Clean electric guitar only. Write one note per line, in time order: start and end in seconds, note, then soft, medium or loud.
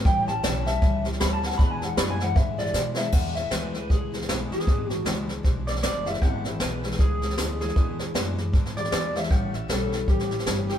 0.06 0.27 G5 loud
0.28 0.65 A5 loud
0.67 1.04 E5 loud
1.21 1.33 B5 loud
1.33 1.46 A5 medium
1.46 1.57 F#5 loud
1.58 1.71 B5 loud
1.71 1.85 G#5 medium
1.85 1.97 F#5 medium
1.98 2.10 B5 medium
2.10 2.23 G#5 loud
2.23 2.36 F#5 medium
2.36 2.73 E5 loud
2.59 2.73 D5 loud
2.74 2.80 D5 loud
2.97 3.13 E5 loud
3.13 3.35 F#5 loud
3.35 3.52 E5 medium
3.52 3.73 B4 medium
3.74 3.91 B4 medium
3.91 4.51 G#4 medium
4.53 4.92 G#4 medium
4.92 5.03 F#4 medium
5.67 5.72 D5 medium
5.83 6.06 D5 loud
6.06 6.22 E5 medium
6.22 6.46 F#5 loud
6.46 6.61 E5 loud
6.62 7.01 B4 loud
7.00 7.60 G#4 medium
7.61 8.11 G#4 medium
8.77 8.91 D5 medium
8.92 9.16 D5 medium
9.16 9.31 E5 medium
9.31 9.55 F#5 loud
9.55 9.70 E5 loud
9.70 10.09 A4 medium
10.09 10.66 G4 medium
10.70 10.79 G4 medium